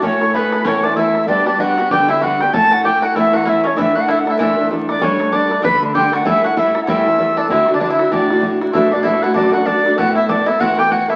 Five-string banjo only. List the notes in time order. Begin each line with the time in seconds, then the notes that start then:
0.03 C#4
0.35 B3
0.52 B3
0.65 C#4
0.83 D4
0.97 E4
1.28 D4
1.46 D4
1.60 F#4
1.78 F#4
1.91 G4
2.09 E4
2.21 F#4
2.54 A4
2.71 F#4
2.85 G4
3.02 F#4
3.16 E4
3.33 F#4
3.45 E4
3.64 C#4
3.78 E4
3.96 F#4
4.08 E4
4.30 E4
4.39 E4
5.02 C#4
5.32 D4
5.64 B4
5.95 G4
6.13 F#4
6.25 E4
6.44 F#4
6.57 E4
6.87 E4
7.37 D4
7.50 E4
7.74 D4
7.80 D4
7.90 E4
8.12 D4
8.73 E4
8.91 D4
9.03 E4
9.13 E4
9.24 E4
9.34 D4
9.53 F#4
9.66 D4
9.98 F#4
10.15 E4
10.29 D4
10.46 E4
10.60 F#4
10.79 G4
10.92 F#4
11.10 E4